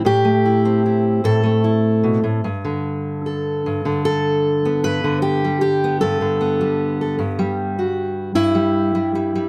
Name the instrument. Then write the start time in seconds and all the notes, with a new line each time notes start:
steel-string acoustic guitar
Already playing: G3
0.05 A2 G4
0.25 A3
0.45 E4
0.65 C4
0.86 E4
1.24 A2 A4
1.43 A3
1.64 E4
2.03 B2
2.24 A2
2.44 G2
2.65 D3
3.26 A4
3.66 G2
3.85 D3
4.05 A4
4.65 B3
4.84 G2 B4
5.04 D3
5.22 G4
5.45 G3
5.61 G4
5.84 B3
6.01 G2 A4
6.21 D3
6.41 B3
6.61 G3
7.01 A4
7.19 G2
7.39 G3
7.79 F#4
8.35 G2 E4
8.55 G3
8.95 G3
9.15 G3
9.35 G3